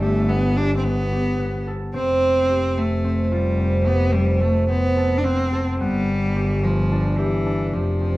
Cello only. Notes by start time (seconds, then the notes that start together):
0.01 A3
0.29 B3
0.57 D4
0.77 C4
0.84 B3
1.95 C4
2.78 A3
3.25 A3
3.32 G3
3.87 B3
4.14 G3
4.41 A3
4.69 B3
5.18 D4
5.25 C4
5.79 G3
6.64 F3
7.18 E3
7.74 F3